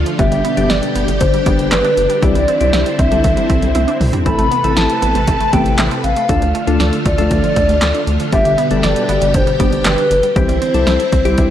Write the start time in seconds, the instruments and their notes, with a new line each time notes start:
Already playing: string machine D3 A3 F4
0.06 synth arpeggio sound F3, closed hi-hat
0.19 analog synth bass G1, string machine B2 G4, synth arpeggio sound D3, synth keys G3 B3 D4 G4, soft synth lead E5, kick, closed hi-hat
0.32 analog synth bass G1, synth arpeggio sound G3, closed hi-hat
0.45 synth arpeggio sound B3, closed hi-hat
0.57 analog synth bass G1, synth keys G3 B3 D4 G4, closed hi-hat
0.70 analog synth bass G1, soft synth lead D5, synth arpeggio sound D5, snare, closed hi-hat
0.83 closed hi-hat
0.95 analog synth bass G1, synth arpeggio sound B3, closed hi-hat
1.08 analog synth bass G1, synth arpeggio sound G3, closed hi-hat
1.21 analog synth bass G1, synth arpeggio sound D3, soft synth lead C5, kick, closed hi-hat
1.34 synth arpeggio sound G3, closed hi-hat
1.46 analog synth bass G1, synth keys G3 B3 D4 G4, synth arpeggio sound B3, kick, closed hi-hat
1.59 analog synth bass G1, closed hi-hat
1.71 analog synth bass G1, soft synth lead B4, synth arpeggio sound D5, snare, clap, closed hi-hat
1.84 synth arpeggio sound D4, closed hi-hat
1.97 analog synth bass G1, closed hi-hat
2.10 synth arpeggio sound G3, closed hi-hat
2.22 analog synth bass C2, synth arpeggio sound E3, synth keys G3 C4 E4 G4, string machine C4 E4, soft synth lead D5, kick, closed hi-hat
2.35 analog synth bass C2, synth arpeggio sound G3, closed hi-hat
2.48 synth arpeggio sound C4, closed hi-hat
2.60 analog synth bass C2, synth keys G3 C4 E4 G4, soft synth lead D5, closed hi-hat
2.73 analog synth bass C2, synth arpeggio sound E4, snare, closed hi-hat
2.86 closed hi-hat
2.99 analog synth bass C2, synth arpeggio sound C4, soft synth lead E5, kick, closed hi-hat
3.12 analog synth bass C2, synth keys G3 C4 E4 A4, synth arpeggio sound G3, closed hi-hat
3.24 analog synth bass C2, synth arpeggio sound E3, soft synth lead E5, kick, closed hi-hat
3.37 synth arpeggio sound G3, closed hi-hat
3.49 analog synth bass C2, synth arpeggio sound C4, kick, closed hi-hat
3.62 analog synth bass C2, closed hi-hat
3.75 analog synth bass C2, synth arpeggio sound E4, closed hi-hat, high tom
3.88 synth arpeggio sound D4, closed hi-hat
4.01 analog synth bass C2, mid tom, open hi-hat
4.13 synth arpeggio sound G3, closed hi-hat, floor tom
4.26 analog synth bass A1, string machine C3 A4 B4, synth arpeggio sound E3, synth keys A3 C4 E4 A4, soft synth lead B5, kick, closed hi-hat
4.39 analog synth bass A1, synth arpeggio sound A3, closed hi-hat
4.51 synth arpeggio sound B3, closed hi-hat
4.64 analog synth bass A1, synth keys A3 C4 E4 A4, closed hi-hat
4.77 analog synth bass A1, synth arpeggio sound E4, soft synth lead A5, snare, closed hi-hat
4.90 closed hi-hat
5.02 analog synth bass A1, synth arpeggio sound B3, closed hi-hat
5.15 analog synth bass A1, synth arpeggio sound A3, closed hi-hat
5.28 analog synth bass A1, synth arpeggio sound E3, soft synth lead A5, kick, closed hi-hat
5.40 synth arpeggio sound A3, closed hi-hat
5.53 analog synth bass A1, synth keys A3 C4 E4 G4, synth arpeggio sound B3, soft synth lead G5, kick, closed hi-hat
5.66 analog synth bass A1, closed hi-hat
5.78 analog synth bass A1, synth arpeggio sound E4, snare, clap, closed hi-hat
5.91 synth arpeggio sound C4, closed hi-hat
6.04 analog synth bass A1, soft synth lead F5, closed hi-hat
6.16 synth arpeggio sound A3, closed hi-hat
6.29 analog synth bass D2, synth arpeggio sound D3, string machine D3 A3 F4, synth keys A3 D4 F4 A4, kick, closed hi-hat
6.42 analog synth bass D2, synth arpeggio sound F3, closed hi-hat
6.55 synth arpeggio sound A3, closed hi-hat
6.67 analog synth bass D2, synth keys A3 D4 F4 A4, closed hi-hat
6.80 analog synth bass D2, synth arpeggio sound D5, snare, closed hi-hat
6.93 closed hi-hat
7.06 analog synth bass D2, synth arpeggio sound A3, soft synth lead D5, kick, closed hi-hat
7.18 analog synth bass D2, synth arpeggio sound F3, synth keys A3 D4 F4 A4, closed hi-hat
7.31 analog synth bass D2, synth arpeggio sound D3, kick, closed hi-hat
7.44 synth arpeggio sound F3, closed hi-hat
7.56 analog synth bass D2, synth arpeggio sound A3, kick, closed hi-hat
7.69 analog synth bass D2, closed hi-hat
7.82 analog synth bass D2, synth arpeggio sound D5, snare, clap, closed hi-hat
7.94 synth arpeggio sound D4, closed hi-hat
8.07 analog synth bass D2, closed hi-hat
8.20 synth arpeggio sound F3, closed hi-hat
8.32 analog synth bass G1, string machine B2 G4, synth arpeggio sound D3, synth keys G3 B3 D4 G4, soft synth lead E5, kick, closed hi-hat
8.45 analog synth bass G1, synth arpeggio sound G3, closed hi-hat
8.58 synth arpeggio sound B3, closed hi-hat
8.71 analog synth bass G1, synth keys G3 B3 D4 A4, closed hi-hat
8.83 analog synth bass G1, synth arpeggio sound D5, soft synth lead D5, snare, closed hi-hat
8.96 closed hi-hat
9.09 analog synth bass G1, synth arpeggio sound B3, closed hi-hat
9.22 analog synth bass G1, synth arpeggio sound G3, closed hi-hat
9.34 analog synth bass G1, synth arpeggio sound D3, soft synth lead C5, kick, closed hi-hat
9.47 synth arpeggio sound G3, closed hi-hat
9.60 analog synth bass G1, synth keys G3 B3 D4 G4, synth arpeggio sound B3, kick, closed hi-hat
9.73 analog synth bass G1, closed hi-hat
9.85 analog synth bass G1, soft synth lead B4, synth arpeggio sound D5, snare, clap, closed hi-hat
9.98 synth arpeggio sound D4, closed hi-hat
10.11 analog synth bass G1, closed hi-hat
10.23 synth arpeggio sound G3, closed hi-hat
10.36 analog synth bass C2, synth arpeggio sound E3, synth keys G3 C4 E4 G4, string machine C4 E4, soft synth lead C5, kick, closed hi-hat
10.49 analog synth bass C2, synth arpeggio sound G3, closed hi-hat
10.62 synth arpeggio sound C4, closed hi-hat
10.74 analog synth bass C2, synth keys G3 C4 E4 A4, closed hi-hat
10.87 analog synth bass C2, synth arpeggio sound E4, snare, closed hi-hat
11.00 closed hi-hat
11.12 analog synth bass C2, synth arpeggio sound C4, kick, closed hi-hat
11.25 analog synth bass C2, synth arpeggio sound G3, synth keys G3 C4 E4 G4, closed hi-hat
11.38 analog synth bass C2, synth arpeggio sound E3, kick, closed hi-hat